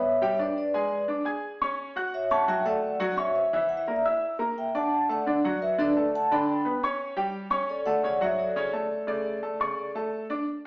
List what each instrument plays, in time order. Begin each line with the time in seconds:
Already playing: grand piano B3 B4 B5, vibraphone C#5 E5
0.21 grand piano G3 G4 G5
0.39 grand piano D4 D5 D6, vibraphone B4 D5
0.58 vibraphone B4 D5
0.74 grand piano G#3 G#4 G#5
1.08 grand piano D4 D5 D6
1.25 grand piano G#4 G#5 G#6
1.61 grand piano C#4 C#5 C#6
1.96 grand piano F#4 F#5 F#6
2.14 vibraphone C#5 E5
2.31 grand piano C#4 C#5 C#6, vibraphone F#5 A5
2.48 grand piano F#3 F#4 F#5, vibraphone E5 G5
2.65 grand piano A3 A4 A5, vibraphone D5 F#5
3.00 grand piano F#3 F#4 F#5
3.16 grand piano C#4 C#5 C#6, vibraphone C#5 E5
3.36 vibraphone C5 E5
3.53 grand piano E3 E4 E5
3.69 vibraphone F#5
3.77 vibraphone E5
3.87 grand piano A#3 A#4 A#5, vibraphone D5
3.96 vibraphone E5
4.05 grand piano E4 E5 E6
4.39 grand piano A#3 A#4 A#5
4.58 vibraphone E5 G5
4.75 grand piano D4 D5 D6, vibraphone F#5 A5
5.09 grand piano A3 A4 A5, vibraphone D5 F#5
5.26 grand piano D3 D4 D5
5.44 grand piano F#3 F#4 F#5
5.62 vibraphone B4 E5
5.78 grand piano D3 D4 D5, vibraphone B4 D5
5.96 grand piano A3 A4 A5
6.15 vibraphone F#5 A5
6.31 grand piano D3 D4 D5, vibraphone G5 B5
6.65 grand piano B3 B4 B5
6.83 grand piano C#4 C#5 C#6
7.17 grand piano G3 G4 G5
7.50 grand piano C#4 C#5 C#6
7.70 vibraphone A4 D5
7.86 grand piano A3 A4 A5, vibraphone D5 F#5
8.03 grand piano C#3 C#4 C#5, vibraphone D5 F#5
8.21 grand piano F#3 F#4 F#5, vibraphone C#5 E5
8.39 vibraphone A4 D5
8.56 grand piano C#3 C#4 C#5
8.73 grand piano A3 A4 A5
9.07 grand piano C#3 A3 D5
9.43 grand piano A3 A4 A5
9.60 grand piano C#3 D5 C#6
9.95 grand piano A3 A4 A5
10.30 grand piano D4 D5 D6